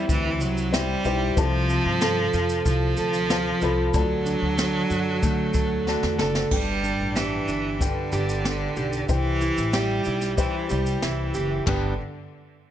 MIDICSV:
0, 0, Header, 1, 6, 480
1, 0, Start_track
1, 0, Key_signature, 1, "major"
1, 0, Tempo, 643777
1, 1023, Time_signature, 4, 2, 24, 8
1, 9474, End_track
2, 0, Start_track
2, 0, Title_t, "Felt piano"
2, 0, Program_c, 0, 0
2, 0, Control_c, 0, 64, 127
2, 0, Note_on_c, 0, 64, 85
2, 0, Note_on_c, 0, 72, 76
2, 0, Note_on_c, 0, 79, 95
2, 532, Note_off_c, 0, 64, 0
2, 532, Note_on_c, 0, 64, 79
2, 535, Note_on_c, 0, 67, 72
2, 540, Note_off_c, 0, 72, 0
2, 540, Note_on_c, 0, 72, 72
2, 547, Note_off_c, 0, 79, 0
2, 547, Note_on_c, 0, 79, 88
2, 743, Note_off_c, 0, 64, 0
2, 744, Note_off_c, 0, 67, 0
2, 746, Note_off_c, 0, 72, 0
2, 750, Note_off_c, 0, 79, 0
2, 778, Note_on_c, 0, 64, 85
2, 782, Note_on_c, 0, 67, 73
2, 788, Note_on_c, 0, 72, 79
2, 792, Note_on_c, 0, 79, 90
2, 985, Note_off_c, 0, 64, 0
2, 987, Note_off_c, 0, 67, 0
2, 990, Note_off_c, 0, 72, 0
2, 992, Note_off_c, 0, 79, 0
2, 1014, Note_on_c, 0, 65, 84
2, 1017, Note_on_c, 0, 69, 84
2, 1020, Note_on_c, 0, 72, 75
2, 1028, Note_on_c, 0, 81, 92
2, 1033, Control_c, 0, 64, 0
2, 1157, Control_c, 0, 64, 127
2, 1836, Note_off_c, 0, 65, 0
2, 1838, Note_off_c, 0, 69, 0
2, 1839, Note_off_c, 0, 72, 0
2, 1843, Note_off_c, 0, 81, 0
2, 2452, Note_on_c, 0, 65, 74
2, 2458, Note_on_c, 0, 69, 70
2, 2462, Note_on_c, 0, 72, 69
2, 2467, Note_on_c, 0, 81, 84
2, 2661, Note_off_c, 0, 65, 0
2, 2664, Note_off_c, 0, 69, 0
2, 2666, Note_off_c, 0, 72, 0
2, 2669, Note_off_c, 0, 81, 0
2, 2696, Note_on_c, 0, 65, 80
2, 2701, Note_on_c, 0, 69, 75
2, 2706, Note_on_c, 0, 72, 74
2, 2711, Note_on_c, 0, 83, 91
2, 2903, Note_off_c, 0, 65, 0
2, 2905, Note_off_c, 0, 69, 0
2, 2908, Note_off_c, 0, 72, 0
2, 2910, Note_off_c, 0, 83, 0
2, 2935, Note_on_c, 0, 65, 68
2, 2940, Note_on_c, 0, 69, 75
2, 2944, Note_on_c, 0, 74, 76
2, 2949, Control_c, 0, 64, 0
2, 2950, Note_on_c, 0, 81, 95
2, 2985, Note_on_c, 0, 66, 82
2, 2986, Note_off_c, 0, 65, 0
2, 3097, Control_c, 0, 64, 127
2, 3758, Note_off_c, 0, 69, 0
2, 3761, Note_off_c, 0, 74, 0
2, 3763, Note_off_c, 0, 81, 0
2, 3781, Note_off_c, 0, 66, 0
2, 4372, Note_on_c, 0, 66, 76
2, 4378, Note_on_c, 0, 69, 68
2, 4382, Note_on_c, 0, 74, 64
2, 4388, Note_on_c, 0, 81, 76
2, 4580, Note_off_c, 0, 66, 0
2, 4583, Note_off_c, 0, 69, 0
2, 4585, Note_off_c, 0, 74, 0
2, 4588, Note_off_c, 0, 81, 0
2, 4611, Note_on_c, 0, 66, 72
2, 4616, Note_on_c, 0, 69, 72
2, 4620, Note_on_c, 0, 74, 72
2, 4625, Note_on_c, 0, 81, 91
2, 4820, Note_off_c, 0, 66, 0
2, 4822, Note_off_c, 0, 69, 0
2, 4824, Note_off_c, 0, 74, 0
2, 4827, Note_off_c, 0, 81, 0
2, 4848, Note_on_c, 0, 62, 74
2, 4855, Note_on_c, 0, 71, 69
2, 4863, Note_on_c, 0, 79, 80
2, 4866, Control_c, 0, 64, 0
2, 4978, Control_c, 0, 64, 127
2, 5673, Note_off_c, 0, 62, 0
2, 5676, Note_off_c, 0, 71, 0
2, 5680, Note_off_c, 0, 79, 0
2, 5811, Note_on_c, 0, 62, 78
2, 5816, Note_on_c, 0, 69, 65
2, 5824, Note_on_c, 0, 79, 94
2, 5863, Note_on_c, 0, 71, 80
2, 5866, Note_off_c, 0, 69, 0
2, 6634, Note_off_c, 0, 62, 0
2, 6641, Note_off_c, 0, 79, 0
2, 6661, Note_off_c, 0, 71, 0
2, 6770, Note_on_c, 0, 64, 74
2, 6779, Note_on_c, 0, 72, 71
2, 6785, Note_on_c, 0, 79, 87
2, 6790, Control_c, 0, 64, 0
2, 6922, Control_c, 0, 64, 127
2, 7595, Note_off_c, 0, 64, 0
2, 7599, Note_off_c, 0, 72, 0
2, 7602, Note_off_c, 0, 79, 0
2, 7731, Note_on_c, 0, 64, 87
2, 7739, Note_on_c, 0, 72, 86
2, 7748, Note_on_c, 0, 79, 104
2, 8555, Note_off_c, 0, 64, 0
2, 8559, Note_off_c, 0, 72, 0
2, 8564, Note_off_c, 0, 79, 0
2, 8702, Note_on_c, 0, 62, 76
2, 8703, Note_on_c, 0, 71, 72
2, 8703, Note_on_c, 0, 79, 87
2, 8710, Control_c, 0, 64, 0
2, 8925, Note_off_c, 0, 62, 0
2, 8925, Note_off_c, 0, 71, 0
2, 8925, Note_off_c, 0, 79, 0
2, 9474, End_track
3, 0, Start_track
3, 0, Title_t, "Steel-string acoustic guitar"
3, 0, Program_c, 1, 25
3, 0, Note_on_c, 1, 55, 73
3, 0, Note_on_c, 1, 60, 56
3, 0, Note_on_c, 1, 64, 65
3, 0, Note_on_c, 1, 67, 63
3, 535, Note_off_c, 1, 64, 0
3, 544, Note_on_c, 1, 64, 62
3, 764, Note_off_c, 1, 55, 0
3, 781, Note_off_c, 1, 67, 0
3, 784, Note_on_c, 1, 67, 70
3, 1022, Note_on_c, 1, 48, 84
3, 1071, Note_off_c, 1, 64, 0
3, 1071, Note_off_c, 1, 67, 0
3, 1259, Note_off_c, 1, 60, 0
3, 1262, Note_on_c, 1, 60, 55
3, 1500, Note_on_c, 1, 69, 74
3, 1745, Note_on_c, 1, 65, 66
3, 1982, Note_on_c, 1, 53, 75
3, 2216, Note_off_c, 1, 69, 0
3, 2219, Note_on_c, 1, 69, 69
3, 2454, Note_off_c, 1, 65, 0
3, 2463, Note_on_c, 1, 65, 65
3, 2700, Note_off_c, 1, 69, 0
3, 2703, Note_on_c, 1, 69, 64
3, 2938, Note_off_c, 1, 48, 0
3, 2941, Note_on_c, 1, 50, 85
3, 2987, Note_off_c, 1, 60, 0
3, 2988, Note_off_c, 1, 53, 0
3, 2989, Note_off_c, 1, 65, 0
3, 3177, Note_on_c, 1, 62, 51
3, 3410, Note_off_c, 1, 69, 0
3, 3413, Note_on_c, 1, 69, 67
3, 3653, Note_on_c, 1, 66, 63
3, 3895, Note_on_c, 1, 57, 77
3, 4124, Note_off_c, 1, 69, 0
3, 4133, Note_on_c, 1, 69, 66
3, 4368, Note_off_c, 1, 66, 0
3, 4377, Note_on_c, 1, 66, 60
3, 4603, Note_off_c, 1, 69, 0
3, 4612, Note_on_c, 1, 69, 68
3, 4858, Note_on_c, 1, 43, 79
3, 4903, Note_off_c, 1, 69, 0
3, 4905, Note_off_c, 1, 57, 0
3, 4906, Note_off_c, 1, 66, 0
3, 5098, Note_off_c, 1, 62, 0
3, 5098, Note_on_c, 1, 62, 50
3, 5341, Note_on_c, 1, 67, 62
3, 5551, Note_off_c, 1, 50, 0
3, 5573, Note_off_c, 1, 62, 0
3, 5582, Note_on_c, 1, 62, 55
3, 5821, Note_on_c, 1, 55, 67
3, 6057, Note_off_c, 1, 67, 0
3, 6060, Note_on_c, 1, 67, 64
3, 6289, Note_off_c, 1, 62, 0
3, 6298, Note_on_c, 1, 62, 58
3, 6537, Note_off_c, 1, 67, 0
3, 6540, Note_on_c, 1, 67, 60
3, 6779, Note_off_c, 1, 43, 0
3, 6827, Note_off_c, 1, 62, 0
3, 7022, Note_on_c, 1, 64, 58
3, 7258, Note_off_c, 1, 67, 0
3, 7261, Note_on_c, 1, 67, 66
3, 7493, Note_off_c, 1, 64, 0
3, 7502, Note_on_c, 1, 64, 60
3, 7731, Note_off_c, 1, 55, 0
3, 7734, Note_on_c, 1, 55, 66
3, 7973, Note_off_c, 1, 67, 0
3, 7976, Note_on_c, 1, 67, 63
3, 8211, Note_off_c, 1, 64, 0
3, 8220, Note_on_c, 1, 64, 58
3, 8458, Note_off_c, 1, 67, 0
3, 8461, Note_on_c, 1, 67, 63
3, 8694, Note_on_c, 1, 43, 86
3, 8696, Note_on_c, 1, 50, 77
3, 8699, Note_off_c, 1, 55, 0
3, 8702, Note_on_c, 1, 55, 81
3, 8705, Note_on_c, 1, 59, 91
3, 8706, Note_off_c, 1, 64, 0
3, 8709, Note_off_c, 1, 67, 0
3, 8709, Note_on_c, 1, 62, 91
3, 8712, Note_on_c, 1, 67, 85
3, 8889, Note_off_c, 1, 43, 0
3, 8890, Note_off_c, 1, 50, 0
3, 8894, Note_off_c, 1, 55, 0
3, 8895, Note_off_c, 1, 59, 0
3, 8897, Note_off_c, 1, 62, 0
3, 8898, Note_off_c, 1, 67, 0
3, 9474, End_track
4, 0, Start_track
4, 0, Title_t, "Cello"
4, 0, Program_c, 2, 42
4, 69, Note_on_c, 2, 52, 103
4, 305, Note_on_c, 2, 54, 100
4, 316, Note_off_c, 2, 52, 0
4, 545, Note_on_c, 2, 55, 113
4, 556, Note_off_c, 2, 54, 0
4, 1027, Note_on_c, 2, 53, 127
4, 1039, Note_off_c, 2, 55, 0
4, 1979, Note_off_c, 2, 53, 0
4, 1983, Note_on_c, 2, 53, 119
4, 2911, Note_off_c, 2, 53, 0
4, 2944, Note_on_c, 2, 54, 119
4, 4388, Note_on_c, 2, 50, 82
4, 4399, Note_off_c, 2, 54, 0
4, 4855, Note_off_c, 2, 50, 0
4, 4859, Note_on_c, 2, 55, 109
4, 5338, Note_on_c, 2, 52, 94
4, 5350, Note_off_c, 2, 55, 0
4, 5821, Note_on_c, 2, 50, 99
4, 5833, Note_off_c, 2, 52, 0
4, 6777, Note_on_c, 2, 52, 107
4, 6788, Note_off_c, 2, 50, 0
4, 7259, Note_on_c, 2, 55, 97
4, 7270, Note_off_c, 2, 52, 0
4, 7733, Note_off_c, 2, 55, 0
4, 7737, Note_on_c, 2, 52, 91
4, 7985, Note_on_c, 2, 55, 85
4, 7996, Note_off_c, 2, 52, 0
4, 8219, Note_on_c, 2, 52, 77
4, 8230, Note_off_c, 2, 55, 0
4, 8700, Note_off_c, 2, 52, 0
4, 8704, Note_on_c, 2, 50, 76
4, 8926, Note_off_c, 2, 50, 0
4, 9474, End_track
5, 0, Start_track
5, 0, Title_t, "Upright bass"
5, 0, Program_c, 3, 32
5, 68, Note_on_c, 3, 38, 91
5, 302, Note_off_c, 3, 38, 0
5, 302, Note_on_c, 3, 36, 95
5, 696, Note_off_c, 3, 36, 0
5, 778, Note_on_c, 3, 35, 92
5, 977, Note_off_c, 3, 35, 0
5, 1022, Note_on_c, 3, 36, 100
5, 1317, Note_off_c, 3, 36, 0
5, 1385, Note_on_c, 3, 43, 88
5, 1678, Note_off_c, 3, 43, 0
5, 1741, Note_on_c, 3, 41, 89
5, 1938, Note_off_c, 3, 41, 0
5, 1980, Note_on_c, 3, 36, 99
5, 2177, Note_off_c, 3, 36, 0
5, 2223, Note_on_c, 3, 38, 85
5, 2615, Note_off_c, 3, 38, 0
5, 2697, Note_on_c, 3, 36, 94
5, 2895, Note_off_c, 3, 36, 0
5, 2939, Note_on_c, 3, 38, 102
5, 3235, Note_off_c, 3, 38, 0
5, 3294, Note_on_c, 3, 38, 80
5, 3591, Note_off_c, 3, 38, 0
5, 3657, Note_on_c, 3, 42, 85
5, 3854, Note_off_c, 3, 42, 0
5, 3899, Note_on_c, 3, 50, 94
5, 4096, Note_off_c, 3, 50, 0
5, 4132, Note_on_c, 3, 38, 85
5, 4430, Note_off_c, 3, 38, 0
5, 4497, Note_on_c, 3, 40, 89
5, 4596, Note_off_c, 3, 40, 0
5, 4617, Note_on_c, 3, 30, 89
5, 4815, Note_off_c, 3, 30, 0
5, 4855, Note_on_c, 3, 31, 88
5, 5152, Note_off_c, 3, 31, 0
5, 5218, Note_on_c, 3, 33, 76
5, 5513, Note_off_c, 3, 33, 0
5, 5575, Note_on_c, 3, 31, 81
5, 5872, Note_off_c, 3, 31, 0
5, 6060, Note_on_c, 3, 31, 101
5, 6453, Note_off_c, 3, 31, 0
5, 6538, Note_on_c, 3, 35, 93
5, 6735, Note_off_c, 3, 35, 0
5, 6778, Note_on_c, 3, 36, 95
5, 7074, Note_off_c, 3, 36, 0
5, 7143, Note_on_c, 3, 33, 98
5, 7437, Note_off_c, 3, 33, 0
5, 7502, Note_on_c, 3, 35, 80
5, 7797, Note_off_c, 3, 35, 0
5, 7985, Note_on_c, 3, 36, 100
5, 8180, Note_off_c, 3, 36, 0
5, 8223, Note_on_c, 3, 36, 84
5, 8419, Note_off_c, 3, 36, 0
5, 8464, Note_on_c, 3, 30, 88
5, 8660, Note_off_c, 3, 30, 0
5, 8702, Note_on_c, 3, 31, 83
5, 8925, Note_off_c, 3, 31, 0
5, 9474, End_track
6, 0, Start_track
6, 0, Title_t, "Drums"
6, 68, Note_on_c, 9, 36, 100
6, 72, Note_on_c, 9, 82, 79
6, 142, Note_off_c, 9, 36, 0
6, 146, Note_off_c, 9, 82, 0
6, 304, Note_on_c, 9, 82, 63
6, 379, Note_off_c, 9, 82, 0
6, 428, Note_on_c, 9, 82, 53
6, 503, Note_off_c, 9, 82, 0
6, 549, Note_on_c, 9, 38, 110
6, 551, Note_on_c, 9, 82, 67
6, 624, Note_off_c, 9, 38, 0
6, 626, Note_off_c, 9, 82, 0
6, 781, Note_on_c, 9, 82, 45
6, 856, Note_off_c, 9, 82, 0
6, 1023, Note_on_c, 9, 36, 114
6, 1024, Note_on_c, 9, 82, 68
6, 1097, Note_off_c, 9, 36, 0
6, 1098, Note_off_c, 9, 82, 0
6, 1263, Note_on_c, 9, 82, 53
6, 1338, Note_off_c, 9, 82, 0
6, 1502, Note_on_c, 9, 82, 75
6, 1503, Note_on_c, 9, 38, 100
6, 1576, Note_off_c, 9, 82, 0
6, 1578, Note_off_c, 9, 38, 0
6, 1741, Note_on_c, 9, 82, 47
6, 1816, Note_off_c, 9, 82, 0
6, 1859, Note_on_c, 9, 82, 60
6, 1933, Note_off_c, 9, 82, 0
6, 1981, Note_on_c, 9, 36, 91
6, 1982, Note_on_c, 9, 82, 80
6, 2056, Note_off_c, 9, 36, 0
6, 2056, Note_off_c, 9, 82, 0
6, 2215, Note_on_c, 9, 82, 64
6, 2289, Note_off_c, 9, 82, 0
6, 2339, Note_on_c, 9, 82, 54
6, 2414, Note_off_c, 9, 82, 0
6, 2460, Note_on_c, 9, 38, 106
6, 2462, Note_on_c, 9, 82, 67
6, 2535, Note_off_c, 9, 38, 0
6, 2537, Note_off_c, 9, 82, 0
6, 2696, Note_on_c, 9, 82, 44
6, 2770, Note_off_c, 9, 82, 0
6, 2936, Note_on_c, 9, 82, 69
6, 2939, Note_on_c, 9, 36, 109
6, 3011, Note_off_c, 9, 82, 0
6, 3014, Note_off_c, 9, 36, 0
6, 3178, Note_on_c, 9, 82, 51
6, 3252, Note_off_c, 9, 82, 0
6, 3417, Note_on_c, 9, 82, 74
6, 3419, Note_on_c, 9, 38, 111
6, 3492, Note_off_c, 9, 82, 0
6, 3493, Note_off_c, 9, 38, 0
6, 3655, Note_on_c, 9, 82, 43
6, 3730, Note_off_c, 9, 82, 0
6, 3899, Note_on_c, 9, 36, 96
6, 3900, Note_on_c, 9, 82, 84
6, 3974, Note_off_c, 9, 36, 0
6, 3975, Note_off_c, 9, 82, 0
6, 4129, Note_on_c, 9, 82, 63
6, 4134, Note_on_c, 9, 36, 89
6, 4204, Note_off_c, 9, 82, 0
6, 4209, Note_off_c, 9, 36, 0
6, 4376, Note_on_c, 9, 38, 57
6, 4450, Note_off_c, 9, 38, 0
6, 4494, Note_on_c, 9, 38, 67
6, 4569, Note_off_c, 9, 38, 0
6, 4615, Note_on_c, 9, 38, 84
6, 4689, Note_off_c, 9, 38, 0
6, 4735, Note_on_c, 9, 38, 91
6, 4810, Note_off_c, 9, 38, 0
6, 4854, Note_on_c, 9, 49, 87
6, 4857, Note_on_c, 9, 36, 98
6, 4928, Note_off_c, 9, 49, 0
6, 4931, Note_off_c, 9, 36, 0
6, 5101, Note_on_c, 9, 82, 47
6, 5176, Note_off_c, 9, 82, 0
6, 5340, Note_on_c, 9, 82, 65
6, 5341, Note_on_c, 9, 38, 95
6, 5414, Note_off_c, 9, 82, 0
6, 5416, Note_off_c, 9, 38, 0
6, 5578, Note_on_c, 9, 82, 42
6, 5653, Note_off_c, 9, 82, 0
6, 5821, Note_on_c, 9, 36, 84
6, 5827, Note_on_c, 9, 82, 75
6, 5895, Note_off_c, 9, 36, 0
6, 5901, Note_off_c, 9, 82, 0
6, 6056, Note_on_c, 9, 82, 61
6, 6131, Note_off_c, 9, 82, 0
6, 6183, Note_on_c, 9, 82, 55
6, 6257, Note_off_c, 9, 82, 0
6, 6302, Note_on_c, 9, 38, 94
6, 6304, Note_on_c, 9, 82, 59
6, 6377, Note_off_c, 9, 38, 0
6, 6379, Note_off_c, 9, 82, 0
6, 6535, Note_on_c, 9, 82, 42
6, 6610, Note_off_c, 9, 82, 0
6, 6656, Note_on_c, 9, 82, 48
6, 6731, Note_off_c, 9, 82, 0
6, 6775, Note_on_c, 9, 82, 63
6, 6778, Note_on_c, 9, 36, 97
6, 6850, Note_off_c, 9, 82, 0
6, 6852, Note_off_c, 9, 36, 0
6, 7018, Note_on_c, 9, 82, 50
6, 7093, Note_off_c, 9, 82, 0
6, 7139, Note_on_c, 9, 82, 56
6, 7214, Note_off_c, 9, 82, 0
6, 7256, Note_on_c, 9, 82, 64
6, 7257, Note_on_c, 9, 38, 104
6, 7331, Note_off_c, 9, 82, 0
6, 7332, Note_off_c, 9, 38, 0
6, 7491, Note_on_c, 9, 82, 44
6, 7565, Note_off_c, 9, 82, 0
6, 7613, Note_on_c, 9, 38, 36
6, 7616, Note_on_c, 9, 82, 53
6, 7688, Note_off_c, 9, 38, 0
6, 7691, Note_off_c, 9, 82, 0
6, 7739, Note_on_c, 9, 82, 82
6, 7740, Note_on_c, 9, 36, 94
6, 7814, Note_off_c, 9, 36, 0
6, 7814, Note_off_c, 9, 82, 0
6, 7974, Note_on_c, 9, 82, 56
6, 8049, Note_off_c, 9, 82, 0
6, 8099, Note_on_c, 9, 82, 54
6, 8174, Note_off_c, 9, 82, 0
6, 8219, Note_on_c, 9, 38, 102
6, 8222, Note_on_c, 9, 82, 67
6, 8294, Note_off_c, 9, 38, 0
6, 8296, Note_off_c, 9, 82, 0
6, 8457, Note_on_c, 9, 82, 43
6, 8531, Note_off_c, 9, 82, 0
6, 8700, Note_on_c, 9, 36, 96
6, 8700, Note_on_c, 9, 43, 92
6, 8700, Note_on_c, 9, 53, 83
6, 8775, Note_off_c, 9, 36, 0
6, 8775, Note_off_c, 9, 43, 0
6, 8775, Note_off_c, 9, 53, 0
6, 9474, End_track
0, 0, End_of_file